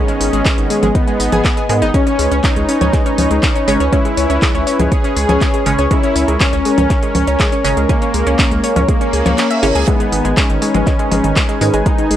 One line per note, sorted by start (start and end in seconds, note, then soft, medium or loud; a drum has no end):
0.00 1.66 G#2 medium
0.00 1.66 D#3 medium
0.00 1.66 G#3 loud
0.00 1.90 B3 medium
0.00 0.85 C#4 loud
0.00 1.90 G#4 medium
0.00 1.90 D#5 medium
0.08 0.13 G#3 loud
0.08 0.13 G#4 medium
0.08 closed hi-hat soft
0.21 0.29 G#1 loud
0.21 0.26 D#3 medium
0.21 0.26 D#4 medium
0.21 open hi-hat loud
0.33 0.42 G#1 medium
0.33 0.38 G#3 loud
0.33 0.38 G#4 medium
0.33 closed hi-hat soft
0.45 0.50 G#3 loud
0.45 0.50 G#4 medium
0.45 kick loud
0.45 clap loud
0.45 closed hi-hat medium
0.58 0.66 G#1 medium
0.58 0.63 D#3 medium
0.58 0.63 D#4 medium
0.58 closed hi-hat soft
0.70 0.75 G#3 loud
0.70 0.75 G#4 medium
0.70 open hi-hat loud
0.83 0.91 G#1 medium
0.83 0.88 G#3 loud
0.83 0.88 G#4 medium
0.83 closed hi-hat soft
0.83 low conga medium
0.95 1.00 D#3 medium
0.95 1.84 B3 loud
0.95 1.00 D#4 medium
0.95 kick loud
0.95 closed hi-hat medium
1.07 1.12 G#3 loud
1.07 1.12 G#4 medium
1.07 closed hi-hat soft
1.20 1.28 G#1 loud
1.20 1.25 D#4 medium
1.20 1.25 D#5 medium
1.20 open hi-hat loud
1.32 1.41 G#1 medium
1.32 1.40 G#4 loud
1.32 1.40 G#5 medium
1.32 closed hi-hat soft
1.32 low conga medium
1.45 1.53 G#4 medium
1.45 1.53 G#5 medium
1.45 kick loud
1.45 clap loud
1.45 closed hi-hat medium
1.57 1.62 G#4 medium
1.57 1.62 G#5 medium
1.57 closed hi-hat soft
1.69 1.83 G#2 medium
1.69 1.91 G#2 loud
1.69 1.91 D#3 medium
1.69 1.91 G#3 loud
1.69 1.74 G#3 medium
1.69 1.74 G#4 medium
1.69 open hi-hat medium
1.82 1.90 G#1 medium
1.82 1.87 D#4 loud
1.82 1.87 D#5 medium
1.82 closed hi-hat soft
1.94 3.65 C#3 medium
1.94 3.65 G#3 medium
1.94 3.65 C#4 medium
1.94 1.99 C#4 loud
1.94 2.40 C#4 loud
1.94 9.84 C#4 medium
1.94 5.87 B4 medium
1.94 1.99 C#5 medium
1.94 9.84 C#5 medium
1.94 kick loud
1.94 closed hi-hat medium
2.07 2.12 C#4 loud
2.07 2.12 C#5 medium
2.07 closed hi-hat soft
2.19 2.28 C#2 medium
2.19 2.24 G#3 medium
2.19 2.24 G#4 medium
2.19 open hi-hat loud
2.31 2.40 C#2 medium
2.31 2.36 C#4 loud
2.31 2.36 C#5 medium
2.31 closed hi-hat soft
2.44 2.49 C#4 loud
2.44 3.83 D#4 loud
2.44 2.49 C#5 medium
2.44 kick loud
2.44 clap loud
2.44 closed hi-hat medium
2.56 2.65 C#2 medium
2.56 2.61 G#3 medium
2.56 2.61 G#4 medium
2.56 closed hi-hat soft
2.69 2.74 C#4 loud
2.69 2.74 C#5 medium
2.69 open hi-hat medium
2.81 2.90 C#2 medium
2.81 2.86 C#4 loud
2.81 2.86 C#5 medium
2.81 closed hi-hat soft
2.81 low conga medium
2.93 2.98 G#3 medium
2.93 2.98 G#4 medium
2.93 kick loud
2.93 clap soft
2.93 closed hi-hat medium
3.06 3.11 C#4 loud
3.06 3.11 C#5 medium
3.06 closed hi-hat soft
3.18 3.27 C#2 loud
3.18 3.23 C#4 loud
3.18 3.23 C#5 medium
3.18 open hi-hat loud
3.18 low conga medium
3.31 3.39 C#2 medium
3.31 3.36 G#3 medium
3.31 3.36 G#4 medium
3.31 closed hi-hat soft
3.43 3.48 C#4 loud
3.43 3.48 C#5 medium
3.43 kick loud
3.43 clap loud
3.43 closed hi-hat medium
3.55 3.60 C#4 loud
3.55 3.60 C#5 medium
3.55 closed hi-hat soft
3.68 3.76 G#1 medium
3.68 3.90 C#3 loud
3.68 3.90 G#3 medium
3.68 3.73 G#3 medium
3.68 3.90 C#4 loud
3.68 3.73 G#4 medium
3.68 open hi-hat medium
3.80 3.89 C#2 medium
3.80 3.85 C#4 loud
3.80 3.85 C#5 medium
3.80 closed hi-hat soft
3.93 5.63 C#3 medium
3.93 5.63 G#3 medium
3.93 3.98 C#4 loud
3.93 5.63 C#4 medium
3.93 4.82 E4 loud
3.93 3.97 C#5 medium
3.93 kick loud
3.93 closed hi-hat medium
4.05 4.10 G#3 medium
4.05 4.10 G#4 medium
4.05 closed hi-hat soft
4.17 4.26 C#2 loud
4.17 4.22 C#4 loud
4.17 4.22 C#5 medium
4.17 open hi-hat loud
4.30 4.38 C#2 medium
4.30 4.35 C#4 loud
4.30 4.35 C#5 medium
4.30 closed hi-hat soft
4.42 4.47 G#3 medium
4.42 4.47 G#4 medium
4.42 kick loud
4.42 clap loud
4.42 closed hi-hat medium
4.55 4.63 C#2 medium
4.55 4.59 C#4 loud
4.55 4.59 C#5 medium
4.55 closed hi-hat soft
4.67 4.72 C#4 loud
4.67 4.72 C#5 medium
4.67 open hi-hat medium
4.79 4.88 C#2 medium
4.79 4.84 G#3 medium
4.79 4.84 G#4 medium
4.79 closed hi-hat soft
4.79 low conga medium
4.92 4.97 C#4 loud
4.92 5.81 G#4 loud
4.92 4.97 C#5 medium
4.92 kick loud
4.92 closed hi-hat medium
5.04 5.09 C#4 loud
5.04 5.09 C#5 medium
5.04 closed hi-hat soft
5.16 5.25 C#2 loud
5.16 5.22 G#3 medium
5.16 5.21 G#4 medium
5.16 open hi-hat loud
5.29 5.37 C#2 medium
5.29 5.34 C#4 loud
5.29 5.34 C#5 medium
5.29 closed hi-hat soft
5.29 low conga loud
5.41 5.46 C#4 loud
5.41 5.46 C#5 medium
5.41 kick loud
5.41 clap loud
5.41 closed hi-hat medium
5.54 5.59 G#3 medium
5.54 5.59 G#4 medium
5.54 closed hi-hat soft
5.66 5.75 G#1 medium
5.66 5.88 C#3 loud
5.66 5.88 G#3 medium
5.66 5.88 C#4 loud
5.66 5.71 C#4 loud
5.66 5.71 C#5 medium
5.66 open hi-hat medium
5.78 5.87 C#2 medium
5.78 5.84 C#4 loud
5.78 5.84 C#5 medium
5.78 closed hi-hat soft
5.91 7.62 C#3 medium
5.91 7.62 G#3 medium
5.91 5.96 G#3 medium
5.91 7.62 C#4 loud
5.91 6.37 E4 loud
5.91 5.96 G#4 medium
5.91 9.84 A#4 medium
5.91 kick loud
5.91 closed hi-hat medium
6.03 6.08 C#4 loud
6.03 6.08 C#5 medium
6.03 closed hi-hat soft
6.16 6.24 C#2 loud
6.16 6.21 C#4 loud
6.16 6.21 C#5 medium
6.16 open hi-hat loud
6.28 6.37 C#2 medium
6.28 6.33 G#3 medium
6.28 6.33 G#4 medium
6.28 closed hi-hat soft
6.40 7.79 C#4 loud
6.40 6.45 C#4 loud
6.40 6.45 C#5 medium
6.40 kick loud
6.40 clap loud
6.40 closed hi-hat medium
6.53 6.61 C#2 medium
6.53 6.58 C#4 loud
6.53 6.58 C#5 medium
6.53 closed hi-hat soft
6.65 6.70 G#3 medium
6.65 6.70 G#4 medium
6.65 open hi-hat medium
6.78 6.86 C#2 medium
6.78 6.83 C#4 loud
6.78 6.83 C#5 medium
6.78 closed hi-hat medium
6.78 low conga medium
6.90 6.95 C#4 loud
6.90 6.95 C#5 medium
6.90 kick loud
6.90 clap soft
6.90 closed hi-hat medium
7.03 7.08 G#3 medium
7.03 7.08 G#4 medium
7.03 closed hi-hat soft
7.15 7.23 C#2 loud
7.15 7.20 C#4 loud
7.15 7.20 C#5 medium
7.15 open hi-hat medium
7.15 low conga medium
7.27 7.36 C#2 medium
7.27 7.32 C#4 loud
7.27 7.32 C#5 medium
7.27 closed hi-hat soft
7.40 7.45 G#3 medium
7.40 7.45 G#4 medium
7.40 kick loud
7.40 clap loud
7.40 closed hi-hat medium
7.52 7.57 C#4 loud
7.52 7.57 C#5 medium
7.52 closed hi-hat soft
7.64 7.73 G#1 loud
7.64 7.86 C#3 loud
7.64 7.86 G#3 medium
7.64 7.86 C#4 loud
7.64 7.70 C#4 loud
7.64 7.70 C#5 medium
7.64 open hi-hat medium
7.77 7.85 C#2 medium
7.77 7.82 G#3 medium
7.77 7.82 G#4 medium
7.77 closed hi-hat soft
7.89 9.60 C#3 medium
7.89 9.60 G#3 medium
7.89 8.79 A#3 loud
7.89 9.60 C#4 loud
7.89 7.94 C#4 loud
7.89 7.94 C#5 medium
7.89 kick loud
7.89 closed hi-hat medium
8.02 8.07 C#4 loud
8.02 8.07 C#5 medium
8.02 closed hi-hat soft
8.14 8.23 C#2 loud
8.14 8.19 G#3 medium
8.14 8.19 G#4 medium
8.14 open hi-hat loud
8.27 8.35 C#2 medium
8.27 8.31 C#4 loud
8.27 8.31 C#5 medium
8.27 closed hi-hat soft
8.39 8.44 C#4 loud
8.39 8.44 C#5 medium
8.39 kick loud
8.39 clap loud
8.39 closed hi-hat medium
8.51 8.60 C#2 medium
8.51 8.56 G#3 medium
8.51 8.56 G#4 medium
8.51 closed hi-hat soft
8.64 8.69 C#4 loud
8.64 8.69 C#5 medium
8.64 open hi-hat medium
8.76 8.85 C#2 medium
8.76 8.81 C#4 loud
8.76 8.81 C#5 medium
8.76 closed hi-hat soft
8.76 low conga medium
8.88 8.93 G#3 medium
8.88 9.78 A#3 loud
8.88 8.93 G#4 medium
8.88 kick loud
8.88 closed hi-hat medium
8.88 reverse cymbal medium
9.01 9.06 C#4 loud
9.01 9.06 C#5 medium
9.01 closed hi-hat soft
9.13 9.22 C#2 loud
9.13 9.25 G#4 medium
9.13 9.25 G#5 medium
9.13 open hi-hat loud
9.26 9.34 C#2 medium
9.26 9.31 C#5 medium
9.26 9.31 C#6 medium
9.26 clap soft
9.26 closed hi-hat soft
9.26 low conga loud
9.38 9.46 C#4 medium
9.38 9.46 C#5 medium
9.38 clap loud
9.38 closed hi-hat medium
9.51 9.62 E5 loud
9.51 9.62 E6 medium
9.51 closed hi-hat soft
9.63 9.71 G#1 loud
9.63 9.85 C#3 loud
9.63 9.85 G#3 medium
9.63 9.85 C#4 loud
9.63 9.71 E4 medium
9.63 9.71 E5 medium
9.63 open hi-hat medium
9.75 9.84 C#2 medium
9.75 9.80 G#4 loud
9.75 9.80 G#5 medium
9.75 closed hi-hat medium
9.87 11.58 G#2 medium
9.87 11.58 D#3 medium
9.87 9.92 G#3 loud
9.87 11.58 G#3 loud
9.87 10.33 B3 loud
9.87 12.17 D#4 medium
9.87 9.92 G#4 medium
9.87 12.17 B4 medium
9.87 12.17 G#5 medium
9.87 kick loud
9.87 closed hi-hat medium
10.00 10.05 G#3 loud
10.00 10.05 G#4 medium
10.00 closed hi-hat soft
10.12 10.21 G#1 medium
10.12 10.17 D#3 medium
10.12 10.17 D#4 medium
10.12 open hi-hat loud
10.25 10.33 G#1 medium
10.25 10.30 G#3 loud
10.25 10.30 G#4 medium
10.25 closed hi-hat soft
10.37 10.42 G#3 loud
10.37 11.76 C#4 loud
10.37 10.42 G#4 medium
10.37 kick loud
10.37 clap loud
10.37 closed hi-hat medium
10.50 10.58 G#1 medium
10.50 10.54 D#3 medium
10.50 10.54 D#4 medium
10.50 closed hi-hat soft
10.62 10.67 G#3 loud
10.62 10.67 G#4 medium
10.62 open hi-hat loud
10.74 10.83 G#1 medium
10.74 10.79 G#3 loud
10.74 10.79 G#4 medium
10.74 closed hi-hat soft
10.74 low conga medium
10.87 10.92 D#3 medium
10.87 10.92 D#4 medium
10.87 kick loud
10.87 clap soft
10.87 closed hi-hat medium
10.99 11.04 G#3 loud
10.99 11.04 G#4 medium
10.99 closed hi-hat soft
11.11 11.20 G#1 medium
11.11 11.16 G#3 loud
11.11 11.16 G#4 medium
11.11 open hi-hat loud
11.11 low conga medium
11.24 11.33 G#1 medium
11.24 11.29 D#3 medium
11.24 11.29 D#4 medium
11.24 closed hi-hat soft
11.36 11.41 G#3 loud
11.36 11.41 G#4 medium
11.36 kick loud
11.36 clap loud
11.36 closed hi-hat medium
11.49 11.54 G#3 loud
11.49 11.54 G#4 medium
11.49 closed hi-hat soft
11.61 11.70 G#2 loud
11.61 11.83 G#2 loud
11.61 11.66 D#3 medium
11.61 11.83 D#3 medium
11.61 11.83 G#3 loud
11.61 11.66 D#4 medium
11.61 open hi-hat loud
11.74 11.82 G#1 medium
11.74 11.79 G#3 loud
11.74 11.79 G#4 medium
11.74 closed hi-hat soft
11.86 12.17 G#2 medium
11.86 12.17 D#3 medium
11.86 12.17 G#3 loud
11.86 11.91 G#3 loud
11.86 12.17 D#4 loud
11.86 11.91 G#4 medium
11.86 kick loud
11.86 closed hi-hat medium
11.98 12.03 D#3 medium
11.98 12.03 D#4 medium
11.98 closed hi-hat soft
12.11 12.17 G#1 loud
12.11 12.16 G#3 loud
12.11 12.16 G#4 medium
12.11 open hi-hat loud